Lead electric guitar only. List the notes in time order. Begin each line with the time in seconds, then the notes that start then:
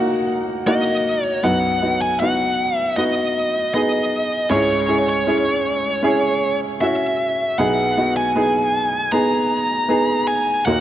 0.67 D#5
1.25 C#5
1.44 F#5
2.02 G#5
2.20 F#5
2.78 E5
2.96 D#5
3.74 D#5
4.51 C#5
5.09 C#5
6.81 E5
7.58 F#5
8.17 G#5
9.12 A#5
10.28 G#5
10.66 F#5